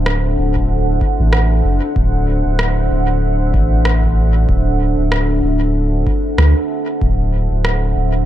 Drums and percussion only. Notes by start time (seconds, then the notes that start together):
0.06 cross-stick
0.56 kick
1.01 kick
1.33 cross-stick
1.96 kick
2.59 cross-stick
3.54 kick
3.85 cross-stick
4.04 kick
4.49 kick
5.12 cross-stick
6.07 kick
6.38 cross-stick
7.02 kick
7.65 cross-stick